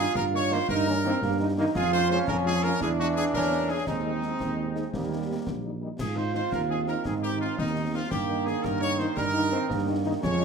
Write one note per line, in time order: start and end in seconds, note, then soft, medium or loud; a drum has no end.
0.00 0.72 F4 loud
0.00 0.14 G#4 loud
0.15 0.60 G2 loud
0.15 0.23 A#4 loud
0.15 concert bass drum medium
0.15 snare medium
0.33 0.39 D#3 medium
0.33 0.39 A#3 medium
0.33 0.39 D#4 medium
0.33 0.51 C#5 loud
0.50 0.57 D#3 medium
0.50 0.57 D#3 loud
0.50 0.57 A#3 medium
0.50 0.57 A#3 loud
0.50 0.57 D#4 medium
0.50 0.70 C5 loud
0.50 snare medium
0.69 1.13 G2 loud
0.69 0.88 D#4 loud
0.69 1.54 A#4 loud
0.69 concert bass drum loud
0.69 snare medium
0.86 0.93 D#3 medium
0.86 0.93 A#3 loud
0.86 0.96 C#4 medium
0.86 0.93 D#4 medium
1.04 1.10 D#3 loud
1.04 1.11 D#3 loud
1.04 1.10 A#3 medium
1.04 1.21 C4 loud
1.04 1.11 D#4 loud
1.22 1.66 G2 loud
1.22 1.39 A#3 loud
1.22 concert bass drum medium
1.22 snare medium
1.39 1.46 D#3 medium
1.39 1.46 A#3 medium
1.39 1.46 D#4 medium
1.39 1.48 D#4 loud
1.57 1.64 D#3 loud
1.57 1.64 A#3 loud
1.57 1.64 D#4 loud
1.57 1.74 D#4 loud
1.75 2.19 F2 loud
1.75 2.77 F3 loud
1.75 2.77 C#4 loud
1.75 2.31 F4 loud
1.75 1.92 G#4 loud
1.75 concert bass drum loud
1.75 snare medium
1.75 crash soft
1.92 1.99 G#3 medium
1.92 1.99 C#4 loud
1.92 1.99 F4 loud
1.92 2.09 C5 loud
2.10 2.17 G#3 loud
2.10 2.17 C#4 medium
2.10 2.17 F4 medium
2.10 2.18 C5 loud
2.10 snare medium
2.27 2.72 F2 loud
2.27 2.83 C#4 loud
2.27 2.35 A#4 loud
2.27 concert bass drum loud
2.27 snare medium
2.45 2.52 G#3 medium
2.45 2.52 C#4 medium
2.45 2.52 F4 medium
2.45 2.62 G#4 loud
2.63 2.70 G#3 medium
2.63 2.70 C#4 medium
2.63 2.69 F4 medium
2.63 2.81 A#4 loud
2.63 snare medium
2.79 3.25 E2 loud
2.79 3.86 E3 loud
2.79 3.86 D4 loud
2.79 3.34 E4 loud
2.79 2.90 G#4 loud
2.79 concert bass drum medium
2.79 snare medium
2.98 3.05 G#3 medium
2.98 3.05 D4 loud
2.98 3.08 F#4 loud
3.15 3.22 G#3 medium
3.15 3.22 D4 loud
3.15 3.24 G#4 loud
3.34 3.74 E2 medium
3.34 3.90 C#4 loud
3.34 3.67 A#4 loud
3.34 concert bass drum medium
3.34 snare medium
3.52 3.58 G#3 medium
3.52 3.58 D4 medium
3.69 3.76 G#3 medium
3.69 3.76 D4 medium
3.69 3.87 G#4 loud
3.86 4.31 D#2 loud
3.86 4.89 G#3 loud
3.86 4.89 C4 loud
3.86 5.73 C4 medium
3.86 5.42 D#4 loud
3.86 concert bass drum medium
3.86 snare medium
3.86 crash soft
4.05 4.11 G#3 medium
4.05 4.11 C4 medium
4.05 4.11 D#4 medium
4.22 4.29 G#3 medium
4.22 4.29 C4 medium
4.22 4.29 D#4 medium
4.22 snare medium
4.40 4.84 D#2 loud
4.40 concert bass drum medium
4.40 snare medium
4.58 4.64 G#3 medium
4.58 4.64 C4 medium
4.58 4.64 D#4 medium
4.75 4.81 G#3 medium
4.75 4.82 C4 medium
4.75 4.81 D#4 medium
4.75 snare medium
4.93 5.38 D#2 loud
4.93 5.78 G3 loud
4.93 5.77 A#3 loud
4.93 concert bass drum loud
4.93 snare medium
5.10 5.17 G3 medium
5.10 5.17 A#3 medium
5.10 5.17 D#4 medium
5.28 5.35 G3 medium
5.28 5.35 A#3 medium
5.28 5.35 D#4 medium
5.46 5.90 A#1 medium
5.46 concert bass drum medium
5.46 snare medium
5.64 5.70 G3 medium
5.64 5.71 A#3 medium
5.64 5.70 D#4 medium
5.81 5.88 G3 medium
5.81 5.88 A#3 medium
5.81 5.88 D#4 medium
5.99 6.43 G#2 medium
5.99 8.07 D#3 loud
5.99 8.07 C4 medium
5.99 7.07 F4 loud
5.99 6.16 G#4 loud
5.99 concert bass drum medium
5.99 snare medium
5.99 crash medium
6.16 6.23 D#3 medium
6.16 6.23 C4 medium
6.16 6.23 D#4 medium
6.16 6.34 C5 loud
6.34 6.40 D#3 medium
6.34 6.40 C4 medium
6.34 6.40 D#4 medium
6.34 6.51 C5 loud
6.34 snare medium
6.52 6.96 D#2 loud
6.52 6.60 A#4 loud
6.52 concert bass drum medium
6.52 snare medium
6.68 6.75 D#3 medium
6.68 6.75 C4 medium
6.68 6.75 D#4 medium
6.68 6.78 G#4 loud
6.87 6.93 D#3 medium
6.87 6.93 C4 medium
6.87 6.93 D#4 medium
6.87 7.04 A#4 medium
6.87 snare medium
7.05 7.49 G#2 medium
7.05 7.59 D#4 medium
7.05 7.13 G#4 medium
7.05 concert bass drum medium
7.05 snare medium
7.22 7.29 D#3 medium
7.22 7.29 C4 medium
7.22 7.29 D#4 medium
7.22 7.39 G4 loud
7.40 7.47 D#3 medium
7.40 7.47 C4 medium
7.40 7.47 D#4 medium
7.40 7.57 F4 loud
7.57 8.02 D#2 loud
7.57 8.10 C4 medium
7.57 7.91 D#4 loud
7.57 concert bass drum medium
7.57 snare medium
7.75 7.82 D#3 medium
7.75 7.82 C4 medium
7.75 7.82 D#4 medium
7.92 7.99 D#3 medium
7.92 7.99 C4 medium
7.92 7.99 D#4 medium
7.92 8.10 F4 loud
8.11 8.55 G2 medium
8.11 10.19 D#3 loud
8.11 9.13 A#3 loud
8.11 10.23 D#4 loud
8.11 8.44 G4 loud
8.11 concert bass drum medium
8.11 snare medium
8.11 crash soft
8.28 8.35 D#3 medium
8.28 8.35 A#3 medium
8.28 8.35 D#4 medium
8.46 8.53 D#3 medium
8.46 8.52 A#3 medium
8.46 8.52 D#4 medium
8.46 8.64 G#4 loud
8.46 snare medium
8.64 9.08 G2 loud
8.64 8.82 A#4 loud
8.64 concert bass drum medium
8.64 snare medium
8.81 8.88 D#3 medium
8.81 8.88 A#3 medium
8.81 8.88 D#4 medium
8.81 8.98 C#5 loud
8.98 9.05 D#3 medium
8.98 9.05 A#3 medium
8.98 9.05 D#4 medium
8.98 9.17 C5 loud
8.98 snare medium
9.16 9.56 G2 loud
9.16 9.25 G3 loud
9.16 10.01 A#4 loud
9.16 concert bass drum medium
9.16 snare medium
9.33 9.40 D#3 loud
9.33 9.40 A#3 medium
9.33 9.40 D#4 medium
9.33 9.51 D#4 loud
9.51 9.58 D#3 loud
9.51 9.58 A#3 medium
9.51 9.71 C4 loud
9.51 9.58 D#4 loud
9.70 10.14 G2 loud
9.70 10.21 A#3 loud
9.70 concert bass drum medium
9.70 snare medium
9.87 9.94 D#3 medium
9.87 9.94 A#3 medium
9.87 9.94 D#4 medium
10.05 10.12 D#3 loud
10.05 10.12 A#3 medium
10.05 10.12 D#4 loud
10.22 10.45 F2 loud
10.22 10.45 F3 loud
10.22 10.45 G#3 loud
10.22 10.45 C#4 loud
10.22 10.45 C#5 loud
10.22 concert bass drum loud
10.22 snare medium
10.22 crash soft
10.40 10.45 F3 loud
10.40 10.45 G#3 loud
10.40 10.45 C#4 medium